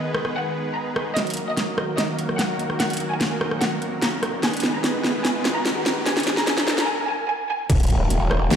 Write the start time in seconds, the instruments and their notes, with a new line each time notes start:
Already playing: supersaw synth D#3 G#3 B3 G#4 B4
0.14 cross-stick
0.25 cross-stick
0.35 violin section F#5
0.76 violin section A#5
0.96 cross-stick
1.16 supersaw synth D#3 F#3 A#3 F#4 A#4, violin section D#5, snare, closed hi-hat, riser
1.27 closed hi-hat
1.30 closed hi-hat
1.34 closed hi-hat
1.37 closed hi-hat
1.47 violin section D#5
1.57 snare, closed hi-hat
1.78 cross-stick
1.98 violin section D#5, snare, closed hi-hat
2.19 closed hi-hat
2.29 cross-stick
2.39 violin section F#5, snare, closed hi-hat
2.59 closed hi-hat
2.70 cross-stick
2.80 violin section F#5, snare, closed hi-hat
2.90 closed hi-hat
2.93 closed hi-hat
2.97 closed hi-hat
3.00 closed hi-hat
3.10 violin section G#5
3.21 snare, closed hi-hat
3.41 cross-stick
3.51 cross-stick
3.61 violin section F#5, snare, closed hi-hat
3.82 closed hi-hat
4.02 violin section A#5, snare, closed hi-hat
4.23 cross-stick, closed hi-hat
4.43 supersaw synth D#3 G#3 B3 G#4 B4, violin section G#5, snare, closed hi-hat
4.53 closed hi-hat
4.57 closed hi-hat
4.60 snare, closed hi-hat
4.63 closed hi-hat
4.74 violin section A#5
4.84 snare, closed hi-hat
5.04 snare
5.25 violin section G#5, snare, closed hi-hat
5.45 snare, closed hi-hat
5.55 violin section A#5
5.66 snare, closed hi-hat
5.86 snare, closed hi-hat
6.06 violin section G#5, snare, closed hi-hat
6.17 snare, closed hi-hat
6.20 closed hi-hat
6.23 snare, closed hi-hat
6.27 closed hi-hat
6.37 violin section A#5, snare
6.47 violin section G#5, snare, closed hi-hat
6.57 snare
6.68 snare
6.78 violin section A#5, snare
6.88 violin section G#5
7.08 violin section G#5
7.29 violin section G#5
7.49 violin section G#5
7.70 wobble bass D#1, supersaw synth D#3 F#3 A#3 F#4 A#4, kick, closed hi-hat, crash, impact
7.80 closed hi-hat
7.83 closed hi-hat
7.87 closed hi-hat
7.90 wobble bass D#1, closed hi-hat
8.10 wobble bass E1, closed hi-hat
8.31 cross-stick
8.51 detuned saw bass D#1, snare, closed hi-hat